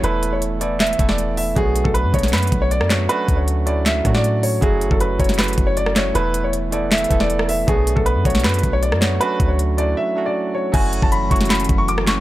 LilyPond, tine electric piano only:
\new Staff \with { instrumentName = "Tine electric piano" } { \time 4/4 \key fis \minor \tempo 4 = 157 <e a b e' a'>4 r8 <e a b e' a'>8 r8 <e a b e' a'>4 r8 | <fis a b d' fis'>4 r8 <fis a b d' fis'>4. r8 <fis a b d' fis'>8 | <fis a cis' d' fis'>4 r8 <fis a cis' d' e'>8 r8 <fis a cis' d' fis'>4 r8 | <fis a cis' e' fis'>4 r8 <fis a cis' e' fis'>4. r8 <fis a cis' e' fis'>8 |
<e a b e' a'>4 r8 <e a b e' a'>8 r8 <e a b e' a'>4 r8 | <fis a b d' fis'>4 r8 <fis a b d' fis'>4. r8 <fis a b d' fis'>8 | <fis a cis' d' fis'>4 r8 <fis a cis' d' e'>8 r8 <fis a cis' d' fis'>4 r8 | <fis a cis' e' fis'>4 r8 <fis a cis' e' fis'>4. r8 <fis a cis' e' fis'>8 | }